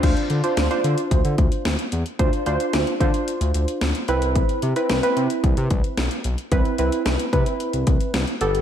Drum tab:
CC |x---------------|----------------|----------------|----------------|
HH |xxxxxxxxxxxxxxxx|xxxxxxxxxxxxxxxx|xxxxxxxxxxxxxxxx|xxxxxxxxxxxxxxxx|
SD |----o-------o---|----o-------o---|----o-------o---|----o-------o---|
BD |o-------o-o-----|o-----o---------|o-------o-o-----|o-----o---o-----|